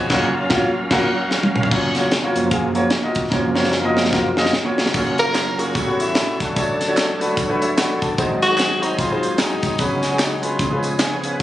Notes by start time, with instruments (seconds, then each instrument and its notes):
Already playing: saxophone section A#3 C#4 F#4
0.10 grand piano F#1 F#2 A#3 F4 F#4 C#5, tonewheel organ F#3 C#4 A#4 F5, kick, snare, crash
0.34 saxophone section A#3 C#4 F4
0.50 grand piano A#3 F4 F#4 C#5, kick, snare
0.74 saxophone section F4
0.89 saxophone section A#3 C#4 F#4, grand piano A#3 F4 F#4 A#4, kick, snare, crash
1.31 snare
1.43 high tom
1.56 mid tom
1.63 floor tom
1.71 grand piano F#1 F#2 A#3 F4 F#4 C#5, kick, crash
1.95 grand piano A#3 F4 F#4 C#5, snare, closed hi-hat
2.12 snare, closed hi-hat
2.23 grand piano A#3 F4 F#4 C#5
2.35 tonewheel organ F#2 F3 A#3, closed hi-hat
2.51 grand piano A#3 F4 F#4 G#4, kick, closed hi-hat
2.75 grand piano A#3 F4 F#4 C#5, closed hi-hat
2.90 snare, closed hi-hat
3.03 grand piano A#3 F4 F#4 D#5
3.15 kick, closed hi-hat
3.30 grand piano F#1 F#2 A#3 F4 F#4 C#5, tonewheel organ F#2 F3 A#3, kick, snare
3.55 grand piano A#3 F4 F#4 C#5, snare
3.64 snare
3.72 snare
3.84 grand piano A#3 F4 F#4 D#5
3.97 snare
4.05 snare
4.12 grand piano A#3 F4 F#4 A#4, kick, snare
4.37 tonewheel organ F#2 F3 A#3, grand piano A#3 F4 F#4 D#5, snare
4.45 snare
4.53 snare
4.65 grand piano A#3 F4 F#4 C#5
4.78 snare
4.86 snare
4.93 grand piano F#1 F#2 A#3 F4 F#4 C#5, tonewheel organ F#3 C#4 F4 A4, kick, crash, tambourine
5.00 tonewheel organ A#4
5.18 tenor saxophone A#4, closed hi-hat, tambourine
5.25 grand piano A#3 F4 F#4 C#5
5.35 snare, clap, closed hi-hat, tambourine
5.58 grand piano A#3 F4 F#4 G#4, tenor saxophone F#4, closed hi-hat, tambourine
5.75 grand piano A1 A2, tonewheel organ G3 B3 C#4 F#4 A4, kick, closed hi-hat, tambourine
5.87 grand piano B3 F#4 G4 C#5
6.00 tenor saxophone E4, closed hi-hat, tambourine
6.15 grand piano B3 F#4 G4 E5, snare, clap, closed hi-hat, tambourine
6.40 tenor saxophone D4, kick, snare, closed hi-hat, tambourine
6.55 grand piano D2 D3 A3 D4 F#4 C#5, tonewheel organ F#3 D4 A4 C#5, kick, closed hi-hat, tambourine
6.81 snare, closed hi-hat, tambourine
6.88 grand piano A3 D4 F#4 C#5
6.97 snare, clap, closed hi-hat, tambourine
7.20 grand piano A3 D4 F#4 B4, closed hi-hat, tambourine
7.37 kick, closed hi-hat, tambourine
7.49 grand piano A3 D4 F#4 B4
7.62 grand piano E5, closed hi-hat, tambourine
7.77 grand piano A3 D4 F#4 B4 F#5, tonewheel organ C#5, snare, clap, closed hi-hat, tambourine
8.02 tonewheel organ D5, grand piano A5, kick, closed hi-hat, tambourine
8.17 grand piano G#1 G#2 G#3 D#4 F#4 C5, tonewheel organ F#3 C4 D#4 G#4, kick, closed hi-hat, tambourine
8.42 tenor saxophone F#4, closed hi-hat, tambourine
8.50 grand piano G#3 D#4 F#4 C5
8.57 snare, clap, closed hi-hat, tambourine
8.82 grand piano G#3 D#4 F#4 C5, tenor saxophone D#4, closed hi-hat, tambourine
8.99 tenor saxophone F4, kick, closed hi-hat, tambourine
9.11 grand piano G#3 D#4 F#4 C5
9.23 closed hi-hat, tambourine
9.38 grand piano G#3 D#4 F#4 G#4, tenor saxophone D#4, snare, clap, closed hi-hat, tambourine
9.63 kick, snare, closed hi-hat, tambourine
9.78 grand piano C#2 C#3 G#3 C#4 F#4 B4, tonewheel organ F3 B3 C#4 G#4, tenor saxophone C#4, kick, closed hi-hat, tambourine
9.83 tonewheel organ F#3
10.03 snare, closed hi-hat, tambourine
10.11 grand piano G#3 C#4 F#4 G#4
10.19 tenor saxophone D#4, snare, clap, closed hi-hat, tambourine
10.43 grand piano G#3 C#4 F#4 B4, tenor saxophone F4, closed hi-hat, tambourine
10.59 grand piano C#2 C#3, tonewheel organ F3 B3 C#4 G#4, kick, closed hi-hat, tambourine
10.72 grand piano G#3 C#4 F4 B4
10.83 closed hi-hat, tambourine
10.99 tonewheel organ C#5, grand piano F5 G#5, snare, clap, closed hi-hat, tambourine
11.24 tonewheel organ B4, grand piano C#5 F5, closed hi-hat, tambourine